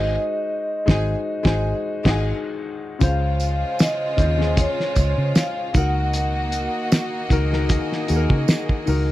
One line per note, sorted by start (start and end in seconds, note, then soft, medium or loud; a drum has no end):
0.00 0.16 G#1 medium
0.00 0.14 G#3 medium
0.00 0.15 D#4 medium
0.00 0.16 F#4 medium
0.00 0.16 G#4 medium
0.00 0.16 C5 medium
0.00 2.20 D#5 medium
0.00 0.16 G#5 medium
0.86 1.14 G#1 medium
0.86 1.13 G#3 medium
0.86 1.13 D#4 medium
0.86 1.14 F#4 medium
0.86 1.14 G#4 medium
0.86 1.15 C5 medium
0.86 1.14 G#5 medium
0.86 kick loud
0.86 snare medium
1.43 1.72 G#1 loud
1.43 1.71 G#3 loud
1.43 1.72 D#4 medium
1.43 1.72 F#4 loud
1.43 1.73 G#4 medium
1.43 1.73 C5 loud
1.43 1.73 G#5 medium
1.43 kick loud
1.43 snare loud
2.04 2.32 G#1 loud
2.04 2.31 G#3 medium
2.04 2.31 D#4 loud
2.04 2.32 F#4 medium
2.04 2.32 G#4 loud
2.04 2.33 D#5 medium
2.04 2.31 F#5 loud
2.04 2.32 G#5 loud
2.04 kick medium
2.04 snare loud
2.04 crash medium
2.99 3.63 C#2 loud
2.99 4.00 C#3 medium
2.99 5.73 C#3 medium
2.99 4.01 C#4 medium
2.99 5.73 C#4 medium
2.99 4.01 F4 medium
2.99 5.72 F4 medium
2.99 4.02 C5 loud
2.99 3.83 F5 medium
2.99 kick medium
2.99 closed hi-hat medium
2.99 tambourine soft
3.03 5.72 G#3 medium
3.03 5.72 F4 medium
3.03 5.72 C5 medium
3.40 closed hi-hat medium
3.40 tambourine soft
3.79 4.61 D#5 medium
3.79 snare loud
3.79 closed hi-hat medium
3.79 tambourine medium
4.17 4.66 D#2 medium
4.17 4.35 C#3 medium
4.17 4.36 C#4 medium
4.17 4.37 F4 medium
4.17 4.37 C5 medium
4.17 kick medium
4.17 closed hi-hat medium
4.38 5.69 C#3 medium
4.38 5.69 C#4 medium
4.38 5.70 F4 medium
4.38 5.71 G#4 medium
4.38 snare soft
4.57 5.39 C#5 loud
4.57 kick medium
4.57 closed hi-hat medium
4.57 tambourine soft
4.80 snare soft
4.96 5.13 C#2 medium
4.96 kick medium
4.96 closed hi-hat medium
4.96 tambourine medium
5.18 5.32 C#3 medium
5.35 5.72 F5 medium
5.35 snare loud
5.35 closed hi-hat medium
5.35 tambourine medium
5.73 6.67 C#2 medium
5.73 9.12 D#3 medium
5.73 9.12 A#3 medium
5.73 7.07 D#4 medium
5.73 7.07 F#4 medium
5.73 7.30 F#4 medium
5.73 9.12 F#4 medium
5.73 7.09 A#4 medium
5.73 9.12 D#5 medium
5.73 7.28 F#5 medium
5.73 kick loud
5.73 closed hi-hat medium
5.73 tambourine soft
6.13 closed hi-hat medium
6.13 tambourine soft
6.52 closed hi-hat medium
6.52 tambourine soft
6.92 snare loud
6.92 closed hi-hat medium
6.92 tambourine medium
7.29 7.78 C#2 medium
7.29 7.48 D#4 medium
7.29 7.48 F#4 medium
7.29 9.12 G#4 medium
7.29 7.49 A#4 loud
7.29 kick medium
7.29 closed hi-hat medium
7.29 tambourine soft
7.50 8.00 D#4 medium
7.50 8.01 F#4 medium
7.50 8.02 A#4 loud
7.50 snare soft
7.69 kick medium
7.69 closed hi-hat medium
7.92 snare soft
8.07 8.26 D#2 medium
8.07 8.75 D#4 medium
8.07 8.75 F#4 medium
8.07 8.16 G#4 medium
8.07 closed hi-hat medium
8.07 tambourine soft
8.16 8.79 A#4 loud
8.30 8.44 C#3 loud
8.30 kick medium
8.48 snare loud
8.48 closed hi-hat medium
8.48 tambourine medium
8.69 kick medium
8.85 9.12 C#2 medium
8.85 9.12 D#4 medium
8.85 9.12 F#4 medium
8.85 9.12 A#4 medium
8.85 open hi-hat soft
8.85 tambourine soft